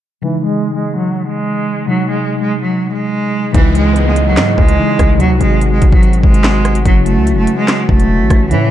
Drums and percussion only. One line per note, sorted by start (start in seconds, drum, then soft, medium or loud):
3.54 kick loud
3.54 closed hi-hat medium
3.75 closed hi-hat medium
3.96 closed hi-hat medium
4.16 closed hi-hat medium
4.37 snare loud
4.37 clap loud
4.37 closed hi-hat medium
4.58 kick medium
4.69 closed hi-hat medium
4.99 kick loud
4.99 cross-stick loud
4.99 closed hi-hat medium
5.20 closed hi-hat medium
5.41 closed hi-hat medium
5.61 closed hi-hat medium
5.82 kick loud
5.82 closed hi-hat medium
5.92 kick loud
6.03 closed hi-hat medium
6.13 closed hi-hat medium
6.23 kick medium
6.34 closed hi-hat medium
6.44 snare loud
6.44 clap loud
6.65 cross-stick loud
6.65 closed hi-hat loud
6.75 closed hi-hat medium
6.85 kick loud
6.85 closed hi-hat medium
7.06 closed hi-hat medium
7.27 closed hi-hat medium
7.47 closed hi-hat medium
7.68 snare loud
7.68 clap loud
7.68 closed hi-hat medium
7.89 kick medium
8.00 closed hi-hat medium
8.30 kick loud
8.30 cross-stick loud
8.30 closed hi-hat medium
8.51 closed hi-hat medium